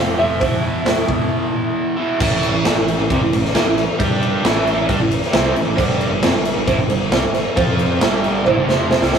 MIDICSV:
0, 0, Header, 1, 5, 480
1, 0, Start_track
1, 0, Key_signature, 0, "minor"
1, 0, Tempo, 447427
1, 433, Time_signature, 4, 2, 24, 8
1, 9854, End_track
2, 0, Start_track
2, 0, Title_t, "Lead electric guitar"
2, 0, Program_c, 0, 29
2, 0, Note_on_c, 0, 77, 90
2, 182, Note_off_c, 0, 77, 0
2, 203, Note_on_c, 0, 76, 95
2, 1842, Note_off_c, 0, 76, 0
2, 9854, End_track
3, 0, Start_track
3, 0, Title_t, "Overdriven electric guitar"
3, 0, Program_c, 1, 29
3, 0, Note_on_c, 1, 41, 78
3, 0, Note_on_c, 1, 48, 82
3, 0, Note_on_c, 1, 53, 89
3, 169, Note_off_c, 1, 53, 0
3, 170, Note_off_c, 1, 41, 0
3, 179, Note_off_c, 1, 48, 0
3, 182, Note_on_c, 1, 53, 81
3, 205, Note_on_c, 1, 48, 71
3, 220, Note_on_c, 1, 41, 70
3, 414, Note_off_c, 1, 53, 0
3, 424, Note_off_c, 1, 41, 0
3, 425, Note_off_c, 1, 48, 0
3, 428, Note_on_c, 1, 40, 81
3, 445, Note_on_c, 1, 47, 83
3, 458, Note_on_c, 1, 52, 89
3, 2092, Note_off_c, 1, 52, 0
3, 2103, Note_off_c, 1, 40, 0
3, 2105, Note_on_c, 1, 52, 76
3, 2109, Note_off_c, 1, 47, 0
3, 2121, Note_on_c, 1, 47, 67
3, 2137, Note_on_c, 1, 40, 56
3, 2339, Note_off_c, 1, 52, 0
3, 2347, Note_off_c, 1, 47, 0
3, 2355, Note_off_c, 1, 40, 0
3, 2355, Note_on_c, 1, 45, 98
3, 2361, Note_on_c, 1, 52, 87
3, 2364, Note_on_c, 1, 57, 96
3, 2705, Note_off_c, 1, 45, 0
3, 2707, Note_off_c, 1, 52, 0
3, 2716, Note_off_c, 1, 57, 0
3, 2718, Note_on_c, 1, 45, 64
3, 2720, Note_on_c, 1, 52, 79
3, 2835, Note_on_c, 1, 43, 94
3, 2839, Note_off_c, 1, 45, 0
3, 2841, Note_off_c, 1, 52, 0
3, 2843, Note_on_c, 1, 50, 102
3, 2951, Note_off_c, 1, 43, 0
3, 2955, Note_off_c, 1, 50, 0
3, 2965, Note_on_c, 1, 45, 55
3, 2968, Note_on_c, 1, 52, 61
3, 3155, Note_off_c, 1, 45, 0
3, 3157, Note_off_c, 1, 52, 0
3, 3202, Note_on_c, 1, 45, 62
3, 3206, Note_on_c, 1, 52, 71
3, 3322, Note_off_c, 1, 45, 0
3, 3324, Note_off_c, 1, 52, 0
3, 3333, Note_on_c, 1, 48, 100
3, 3337, Note_on_c, 1, 55, 106
3, 3440, Note_off_c, 1, 48, 0
3, 3442, Note_off_c, 1, 55, 0
3, 3452, Note_on_c, 1, 45, 68
3, 3462, Note_on_c, 1, 52, 80
3, 3554, Note_off_c, 1, 45, 0
3, 3566, Note_off_c, 1, 52, 0
3, 3567, Note_on_c, 1, 45, 62
3, 3579, Note_on_c, 1, 52, 79
3, 3757, Note_off_c, 1, 45, 0
3, 3763, Note_off_c, 1, 52, 0
3, 3803, Note_on_c, 1, 51, 103
3, 3813, Note_on_c, 1, 58, 116
3, 3910, Note_off_c, 1, 51, 0
3, 3914, Note_on_c, 1, 45, 72
3, 3915, Note_off_c, 1, 58, 0
3, 3919, Note_on_c, 1, 52, 85
3, 4110, Note_off_c, 1, 45, 0
3, 4113, Note_off_c, 1, 52, 0
3, 4279, Note_on_c, 1, 55, 89
3, 4285, Note_on_c, 1, 62, 97
3, 4288, Note_on_c, 1, 67, 97
3, 4753, Note_off_c, 1, 55, 0
3, 4755, Note_on_c, 1, 45, 103
3, 4756, Note_off_c, 1, 62, 0
3, 4757, Note_off_c, 1, 67, 0
3, 4763, Note_on_c, 1, 52, 102
3, 4764, Note_on_c, 1, 57, 110
3, 5229, Note_off_c, 1, 52, 0
3, 5231, Note_off_c, 1, 45, 0
3, 5233, Note_on_c, 1, 55, 94
3, 5235, Note_off_c, 1, 57, 0
3, 5247, Note_on_c, 1, 62, 114
3, 5350, Note_off_c, 1, 55, 0
3, 5356, Note_on_c, 1, 45, 66
3, 5357, Note_off_c, 1, 62, 0
3, 5363, Note_on_c, 1, 52, 68
3, 5550, Note_off_c, 1, 45, 0
3, 5554, Note_off_c, 1, 52, 0
3, 5704, Note_on_c, 1, 48, 96
3, 5713, Note_on_c, 1, 55, 108
3, 5720, Note_on_c, 1, 60, 115
3, 5941, Note_off_c, 1, 48, 0
3, 5946, Note_on_c, 1, 45, 57
3, 5947, Note_off_c, 1, 55, 0
3, 5951, Note_on_c, 1, 52, 75
3, 5953, Note_off_c, 1, 60, 0
3, 6059, Note_off_c, 1, 45, 0
3, 6063, Note_off_c, 1, 52, 0
3, 6072, Note_on_c, 1, 45, 58
3, 6075, Note_on_c, 1, 52, 65
3, 6179, Note_on_c, 1, 43, 93
3, 6189, Note_off_c, 1, 45, 0
3, 6193, Note_off_c, 1, 52, 0
3, 6193, Note_on_c, 1, 50, 102
3, 6197, Note_on_c, 1, 55, 94
3, 6533, Note_off_c, 1, 43, 0
3, 6535, Note_off_c, 1, 50, 0
3, 6546, Note_on_c, 1, 43, 74
3, 6548, Note_on_c, 1, 50, 87
3, 6551, Note_off_c, 1, 55, 0
3, 6670, Note_off_c, 1, 43, 0
3, 6674, Note_off_c, 1, 50, 0
3, 6674, Note_on_c, 1, 41, 84
3, 6678, Note_on_c, 1, 48, 117
3, 6789, Note_off_c, 1, 41, 0
3, 6792, Note_off_c, 1, 48, 0
3, 6796, Note_on_c, 1, 43, 60
3, 6800, Note_on_c, 1, 50, 71
3, 6989, Note_off_c, 1, 43, 0
3, 6992, Note_off_c, 1, 50, 0
3, 7039, Note_on_c, 1, 43, 66
3, 7044, Note_on_c, 1, 50, 68
3, 7156, Note_off_c, 1, 50, 0
3, 7159, Note_off_c, 1, 43, 0
3, 7160, Note_on_c, 1, 45, 101
3, 7163, Note_on_c, 1, 52, 102
3, 7272, Note_off_c, 1, 45, 0
3, 7273, Note_off_c, 1, 52, 0
3, 7280, Note_on_c, 1, 43, 69
3, 7287, Note_on_c, 1, 50, 71
3, 7392, Note_off_c, 1, 43, 0
3, 7394, Note_off_c, 1, 50, 0
3, 7405, Note_on_c, 1, 43, 71
3, 7407, Note_on_c, 1, 50, 71
3, 7593, Note_off_c, 1, 43, 0
3, 7594, Note_off_c, 1, 50, 0
3, 7636, Note_on_c, 1, 48, 110
3, 7639, Note_on_c, 1, 55, 101
3, 7749, Note_off_c, 1, 48, 0
3, 7751, Note_off_c, 1, 55, 0
3, 7758, Note_on_c, 1, 43, 77
3, 7760, Note_on_c, 1, 50, 74
3, 7950, Note_off_c, 1, 43, 0
3, 7951, Note_off_c, 1, 50, 0
3, 8107, Note_on_c, 1, 53, 84
3, 8113, Note_on_c, 1, 60, 84
3, 8118, Note_on_c, 1, 65, 105
3, 8584, Note_off_c, 1, 53, 0
3, 8587, Note_off_c, 1, 60, 0
3, 8589, Note_off_c, 1, 65, 0
3, 8598, Note_on_c, 1, 43, 90
3, 8606, Note_on_c, 1, 50, 89
3, 8609, Note_on_c, 1, 55, 112
3, 9069, Note_off_c, 1, 43, 0
3, 9071, Note_off_c, 1, 50, 0
3, 9073, Note_off_c, 1, 55, 0
3, 9075, Note_on_c, 1, 45, 91
3, 9078, Note_on_c, 1, 52, 114
3, 9187, Note_off_c, 1, 45, 0
3, 9189, Note_off_c, 1, 52, 0
3, 9195, Note_on_c, 1, 43, 84
3, 9202, Note_on_c, 1, 50, 99
3, 9307, Note_off_c, 1, 43, 0
3, 9311, Note_off_c, 1, 50, 0
3, 9313, Note_on_c, 1, 41, 109
3, 9318, Note_on_c, 1, 48, 101
3, 9325, Note_on_c, 1, 53, 104
3, 9665, Note_off_c, 1, 48, 0
3, 9666, Note_off_c, 1, 41, 0
3, 9671, Note_off_c, 1, 53, 0
3, 9678, Note_on_c, 1, 48, 102
3, 9685, Note_on_c, 1, 55, 106
3, 9788, Note_off_c, 1, 48, 0
3, 9791, Note_on_c, 1, 43, 91
3, 9792, Note_off_c, 1, 55, 0
3, 9800, Note_on_c, 1, 50, 98
3, 9803, Note_on_c, 1, 55, 97
3, 9854, Note_off_c, 1, 43, 0
3, 9854, Note_off_c, 1, 50, 0
3, 9854, Note_off_c, 1, 55, 0
3, 9854, End_track
4, 0, Start_track
4, 0, Title_t, "Picked electric bass"
4, 0, Program_c, 2, 34
4, 0, Note_on_c, 2, 29, 80
4, 150, Note_off_c, 2, 29, 0
4, 184, Note_on_c, 2, 29, 82
4, 440, Note_off_c, 2, 29, 0
4, 440, Note_on_c, 2, 28, 85
4, 837, Note_off_c, 2, 28, 0
4, 912, Note_on_c, 2, 28, 85
4, 1114, Note_off_c, 2, 28, 0
4, 1162, Note_on_c, 2, 28, 94
4, 1360, Note_off_c, 2, 28, 0
4, 2364, Note_on_c, 2, 33, 83
4, 2698, Note_off_c, 2, 33, 0
4, 2708, Note_on_c, 2, 33, 75
4, 2826, Note_off_c, 2, 33, 0
4, 2841, Note_on_c, 2, 31, 101
4, 2953, Note_off_c, 2, 31, 0
4, 2957, Note_on_c, 2, 33, 71
4, 3183, Note_off_c, 2, 33, 0
4, 3204, Note_on_c, 2, 33, 88
4, 3315, Note_off_c, 2, 33, 0
4, 3326, Note_on_c, 2, 36, 91
4, 3436, Note_off_c, 2, 36, 0
4, 3445, Note_on_c, 2, 33, 87
4, 3555, Note_off_c, 2, 33, 0
4, 3566, Note_on_c, 2, 33, 85
4, 3788, Note_off_c, 2, 33, 0
4, 3801, Note_on_c, 2, 39, 90
4, 3913, Note_off_c, 2, 39, 0
4, 3924, Note_on_c, 2, 33, 81
4, 4146, Note_off_c, 2, 33, 0
4, 4288, Note_on_c, 2, 43, 84
4, 4731, Note_off_c, 2, 43, 0
4, 4756, Note_on_c, 2, 33, 97
4, 5205, Note_off_c, 2, 33, 0
4, 5242, Note_on_c, 2, 43, 98
4, 5351, Note_off_c, 2, 43, 0
4, 5358, Note_on_c, 2, 33, 84
4, 5582, Note_off_c, 2, 33, 0
4, 5719, Note_on_c, 2, 36, 95
4, 5943, Note_off_c, 2, 36, 0
4, 5955, Note_on_c, 2, 33, 77
4, 6069, Note_off_c, 2, 33, 0
4, 6075, Note_on_c, 2, 33, 81
4, 6189, Note_off_c, 2, 33, 0
4, 6205, Note_on_c, 2, 31, 77
4, 6537, Note_off_c, 2, 31, 0
4, 6552, Note_on_c, 2, 31, 80
4, 6667, Note_off_c, 2, 31, 0
4, 6671, Note_on_c, 2, 29, 89
4, 6787, Note_off_c, 2, 29, 0
4, 6792, Note_on_c, 2, 31, 74
4, 7018, Note_off_c, 2, 31, 0
4, 7034, Note_on_c, 2, 31, 81
4, 7148, Note_off_c, 2, 31, 0
4, 7160, Note_on_c, 2, 33, 99
4, 7258, Note_off_c, 2, 33, 0
4, 7265, Note_on_c, 2, 31, 91
4, 7382, Note_off_c, 2, 31, 0
4, 7399, Note_on_c, 2, 31, 84
4, 7621, Note_off_c, 2, 31, 0
4, 7634, Note_on_c, 2, 36, 91
4, 7747, Note_off_c, 2, 36, 0
4, 7758, Note_on_c, 2, 31, 88
4, 7981, Note_off_c, 2, 31, 0
4, 8119, Note_on_c, 2, 41, 92
4, 8564, Note_off_c, 2, 41, 0
4, 8597, Note_on_c, 2, 31, 99
4, 9042, Note_off_c, 2, 31, 0
4, 9070, Note_on_c, 2, 33, 83
4, 9183, Note_off_c, 2, 33, 0
4, 9195, Note_on_c, 2, 31, 108
4, 9306, Note_off_c, 2, 31, 0
4, 9319, Note_on_c, 2, 29, 97
4, 9651, Note_off_c, 2, 29, 0
4, 9674, Note_on_c, 2, 36, 103
4, 9785, Note_off_c, 2, 36, 0
4, 9799, Note_on_c, 2, 31, 85
4, 9854, Note_off_c, 2, 31, 0
4, 9854, End_track
5, 0, Start_track
5, 0, Title_t, "Drums"
5, 431, Note_on_c, 9, 56, 92
5, 442, Note_on_c, 9, 36, 113
5, 443, Note_on_c, 9, 46, 50
5, 538, Note_off_c, 9, 56, 0
5, 549, Note_off_c, 9, 36, 0
5, 550, Note_off_c, 9, 46, 0
5, 916, Note_on_c, 9, 56, 75
5, 925, Note_on_c, 9, 38, 109
5, 925, Note_on_c, 9, 46, 52
5, 1024, Note_off_c, 9, 56, 0
5, 1032, Note_off_c, 9, 38, 0
5, 1032, Note_off_c, 9, 46, 0
5, 1164, Note_on_c, 9, 36, 91
5, 1271, Note_off_c, 9, 36, 0
5, 2364, Note_on_c, 9, 49, 110
5, 2364, Note_on_c, 9, 57, 87
5, 2365, Note_on_c, 9, 36, 109
5, 2472, Note_off_c, 9, 36, 0
5, 2472, Note_off_c, 9, 49, 0
5, 2472, Note_off_c, 9, 57, 0
5, 2608, Note_on_c, 9, 57, 64
5, 2715, Note_off_c, 9, 57, 0
5, 2846, Note_on_c, 9, 38, 116
5, 2846, Note_on_c, 9, 57, 89
5, 2953, Note_off_c, 9, 38, 0
5, 2953, Note_off_c, 9, 57, 0
5, 3092, Note_on_c, 9, 57, 66
5, 3200, Note_off_c, 9, 57, 0
5, 3329, Note_on_c, 9, 36, 96
5, 3331, Note_on_c, 9, 57, 73
5, 3437, Note_off_c, 9, 36, 0
5, 3438, Note_off_c, 9, 57, 0
5, 3573, Note_on_c, 9, 57, 71
5, 3681, Note_off_c, 9, 57, 0
5, 3698, Note_on_c, 9, 38, 31
5, 3806, Note_off_c, 9, 38, 0
5, 3808, Note_on_c, 9, 38, 105
5, 3808, Note_on_c, 9, 57, 80
5, 3916, Note_off_c, 9, 38, 0
5, 3916, Note_off_c, 9, 57, 0
5, 4053, Note_on_c, 9, 38, 33
5, 4053, Note_on_c, 9, 57, 59
5, 4160, Note_off_c, 9, 38, 0
5, 4160, Note_off_c, 9, 57, 0
5, 4290, Note_on_c, 9, 36, 116
5, 4292, Note_on_c, 9, 57, 80
5, 4398, Note_off_c, 9, 36, 0
5, 4399, Note_off_c, 9, 57, 0
5, 4534, Note_on_c, 9, 57, 57
5, 4641, Note_off_c, 9, 57, 0
5, 4773, Note_on_c, 9, 38, 117
5, 4773, Note_on_c, 9, 57, 87
5, 4880, Note_off_c, 9, 38, 0
5, 4880, Note_off_c, 9, 57, 0
5, 5013, Note_on_c, 9, 57, 57
5, 5120, Note_off_c, 9, 57, 0
5, 5246, Note_on_c, 9, 36, 95
5, 5247, Note_on_c, 9, 57, 77
5, 5353, Note_off_c, 9, 36, 0
5, 5355, Note_off_c, 9, 57, 0
5, 5486, Note_on_c, 9, 57, 66
5, 5593, Note_off_c, 9, 57, 0
5, 5602, Note_on_c, 9, 38, 30
5, 5709, Note_off_c, 9, 38, 0
5, 5722, Note_on_c, 9, 38, 113
5, 5722, Note_on_c, 9, 57, 85
5, 5830, Note_off_c, 9, 38, 0
5, 5830, Note_off_c, 9, 57, 0
5, 5967, Note_on_c, 9, 57, 68
5, 6074, Note_off_c, 9, 57, 0
5, 6195, Note_on_c, 9, 56, 81
5, 6205, Note_on_c, 9, 36, 107
5, 6213, Note_on_c, 9, 57, 89
5, 6302, Note_off_c, 9, 56, 0
5, 6312, Note_off_c, 9, 36, 0
5, 6320, Note_off_c, 9, 57, 0
5, 6444, Note_on_c, 9, 57, 63
5, 6551, Note_off_c, 9, 57, 0
5, 6679, Note_on_c, 9, 56, 62
5, 6681, Note_on_c, 9, 38, 115
5, 6681, Note_on_c, 9, 57, 92
5, 6786, Note_off_c, 9, 56, 0
5, 6788, Note_off_c, 9, 38, 0
5, 6788, Note_off_c, 9, 57, 0
5, 6923, Note_on_c, 9, 57, 72
5, 7030, Note_off_c, 9, 57, 0
5, 7159, Note_on_c, 9, 56, 77
5, 7162, Note_on_c, 9, 36, 96
5, 7163, Note_on_c, 9, 57, 73
5, 7266, Note_off_c, 9, 56, 0
5, 7269, Note_off_c, 9, 36, 0
5, 7271, Note_off_c, 9, 57, 0
5, 7389, Note_on_c, 9, 56, 65
5, 7399, Note_on_c, 9, 57, 68
5, 7497, Note_off_c, 9, 56, 0
5, 7506, Note_off_c, 9, 57, 0
5, 7634, Note_on_c, 9, 56, 74
5, 7639, Note_on_c, 9, 38, 123
5, 7639, Note_on_c, 9, 57, 74
5, 7742, Note_off_c, 9, 56, 0
5, 7746, Note_off_c, 9, 38, 0
5, 7746, Note_off_c, 9, 57, 0
5, 7872, Note_on_c, 9, 56, 70
5, 7880, Note_on_c, 9, 38, 34
5, 7880, Note_on_c, 9, 57, 61
5, 7979, Note_off_c, 9, 56, 0
5, 7987, Note_off_c, 9, 38, 0
5, 7987, Note_off_c, 9, 57, 0
5, 8115, Note_on_c, 9, 56, 84
5, 8122, Note_on_c, 9, 36, 118
5, 8124, Note_on_c, 9, 57, 84
5, 8222, Note_off_c, 9, 56, 0
5, 8230, Note_off_c, 9, 36, 0
5, 8231, Note_off_c, 9, 57, 0
5, 8359, Note_on_c, 9, 57, 58
5, 8466, Note_off_c, 9, 57, 0
5, 8597, Note_on_c, 9, 38, 126
5, 8597, Note_on_c, 9, 57, 85
5, 8599, Note_on_c, 9, 56, 78
5, 8705, Note_off_c, 9, 38, 0
5, 8705, Note_off_c, 9, 57, 0
5, 8707, Note_off_c, 9, 56, 0
5, 8841, Note_on_c, 9, 57, 57
5, 8948, Note_off_c, 9, 57, 0
5, 9077, Note_on_c, 9, 56, 111
5, 9084, Note_on_c, 9, 48, 66
5, 9184, Note_off_c, 9, 56, 0
5, 9191, Note_off_c, 9, 48, 0
5, 9319, Note_on_c, 9, 56, 80
5, 9324, Note_on_c, 9, 38, 76
5, 9427, Note_off_c, 9, 56, 0
5, 9431, Note_off_c, 9, 38, 0
5, 9554, Note_on_c, 9, 56, 96
5, 9559, Note_on_c, 9, 38, 90
5, 9662, Note_off_c, 9, 56, 0
5, 9666, Note_off_c, 9, 38, 0
5, 9681, Note_on_c, 9, 38, 82
5, 9788, Note_off_c, 9, 38, 0
5, 9799, Note_on_c, 9, 56, 87
5, 9804, Note_on_c, 9, 38, 105
5, 9854, Note_off_c, 9, 38, 0
5, 9854, Note_off_c, 9, 56, 0
5, 9854, End_track
0, 0, End_of_file